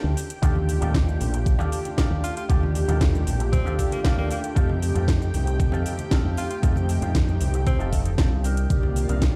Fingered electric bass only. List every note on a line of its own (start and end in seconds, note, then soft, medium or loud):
0.04 0.14 D2 loud
0.42 0.77 D#2 loud
0.82 1.16 D#2 loud
1.20 1.55 A#1 medium
1.59 1.69 D#2 medium
2.11 2.21 D#2 loud
2.50 2.84 D#2 loud
2.88 3.23 D#2 loud
3.27 3.62 A#1 medium
3.66 3.76 D#2 medium
4.18 4.28 D#2 loud
4.56 4.91 F2 medium
4.95 5.30 F2 loud
5.34 5.69 C2 loud
5.73 5.83 F2 medium
6.25 6.35 F2 loud
6.63 6.98 F2 loud
7.02 7.37 F2 loud
7.41 7.76 C2 medium
7.79 8.31 F1 loud
8.31 8.66 C2 loud
8.70 9.05 C2 loud
9.09 9.36 C2 medium